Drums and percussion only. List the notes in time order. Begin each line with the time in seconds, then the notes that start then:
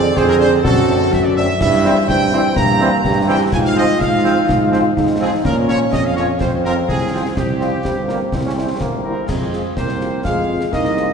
0.17 concert bass drum, snare
0.41 snare
0.65 concert bass drum, snare
1.13 concert bass drum, snare
1.61 concert bass drum, snare, crash
1.85 snare
2.09 concert bass drum, snare
2.33 snare
2.56 concert bass drum, snare
2.81 snare
3.05 concert bass drum, snare
3.52 concert bass drum, snare, crash
3.77 snare
4.01 concert bass drum, snare
4.26 snare
4.49 concert bass drum, snare
4.73 snare
4.97 concert bass drum, snare
5.45 concert bass drum, snare, crash
5.69 snare
5.93 concert bass drum, snare
6.17 snare
6.41 concert bass drum, snare
6.65 snare
6.89 concert bass drum, snare
7.37 concert bass drum, snare, crash
7.61 snare
7.85 concert bass drum, snare
8.09 snare
8.32 concert bass drum, snare
8.81 concert bass drum, snare
9.29 concert bass drum, snare, crash
9.53 snare
9.77 concert bass drum, snare
9.89 snare
10.01 snare
10.25 concert bass drum, snare
10.61 snare
10.73 concert bass drum, snare
10.85 snare
10.97 snare